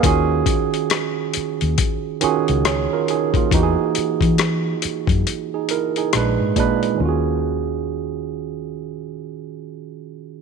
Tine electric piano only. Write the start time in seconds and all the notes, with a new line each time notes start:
0.03 D#3 C#4 F4 F#4 G#4
2.21 D#3 C#4 F4 F#4 G#4
2.67 G#4 C#5
2.93 F4 A#4
3.10 D#4 G#4
3.37 A#3 F4
3.53 E3 D#4 F#4 G4
3.63 G#4
5.54 D#4 G#4
5.71 E4 A#4
5.98 D#4 G#4
6.13 A#2 G#3 D4 B4
6.56 A#2 G#3 D4 B4
6.95 D#3 C#4
7.01 F4 F#4
7.09 G#4